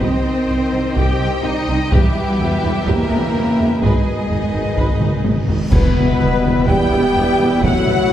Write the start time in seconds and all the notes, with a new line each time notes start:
Already playing: D#3 D#4 D#5
0.00 C2 D#3 C4 G4 C5 G5, taiko
0.48 C2 D#4
0.71 C2 C4
0.95 C2 C4 G4 G5, taiko
1.19 C2 C4
1.43 C2 G3 D#4 D#5
1.68 C2 C4
1.90 E1 E2 B2 E3 G3 E4 G4 B4 E5, taiko
2.39 E1 E2 E4, taiko low
2.62 E1 E2 B3
2.86 E1 E2 C#3 A#3 G4 A#4, taiko
3.10 E1 E2 B3, taiko low
3.34 E1 E2 E4
3.58 E1 E2 B3
3.81 G#1 B2 D#3 G#3 D#4 G#4 B4 D#5, taiko, reverse cymbal
4.05 G#2
4.12 G#2
4.20 G#2
4.28 G#1 G#2 G#4, taiko low
4.35 G#2
4.43 G#2
4.50 G#1 G#2 D#4
4.54 G#1
4.58 G#2
4.65 G#2
4.72 G#2
4.77 G#1 G#2 B4, taiko
4.87 G#2
4.95 G#2
5.00 G#1 G#2 D#4, taiko mid
5.10 G#2
5.17 G#2
5.24 G#1 G#2 G#4, taiko high
5.32 G#2
5.40 G#2
5.47 G#1 G#2 D#4, taiko low
5.54 G#2
5.61 G#2
5.71 E1 E2 B2 E3 B3 E4 B4 E5, concert bass drum, taiko, crash, impact
5.96 E1 E2, taiko mid
6.19 G3, taiko mid
6.43 E1 E2, taiko mid
6.67 E1 E2 G3 B3 G4 G5, taiko
6.91 E1 E2
7.15 E1 E2
7.39 E1 E2
7.62 E1 E2 F#3 A3 F#4 F#5, taiko
7.87 E1 E2, taiko mid